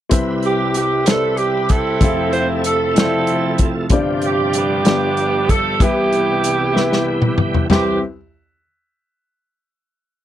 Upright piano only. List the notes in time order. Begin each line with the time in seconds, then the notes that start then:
0.09 C2 C3 C4 E4 G4 B4 E5
1.05 C4 E4 G4 B4 C5
1.14 D5
2.01 F1 F2 F3 C4 E4 G#4 E5
2.09 A4
2.94 F3 C4 E4 A4 D5
3.04 E5
3.90 G1 G2 C4 D4 F4 G4 D5
4.84 G1 G2 B3 D4 F4 G4 D5
5.79 C2 C3 B3 E4 G4 B4 E5
6.73 B3 E4 G4 B4 E5
7.71 C2 C4 E4 G4 B4 E5